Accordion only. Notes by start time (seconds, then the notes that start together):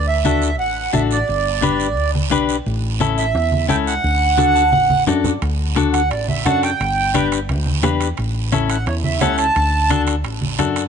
0.08 E5
0.59 F#5
0.95 E5
1.12 D5
3.18 E5
3.69 G5
3.87 F#5
5.93 F#5
6.11 D5
6.29 E5
6.46 F#5
6.64 G5
8.70 F#5
8.88 C#5
9.04 E5
9.20 F#5
9.37 A5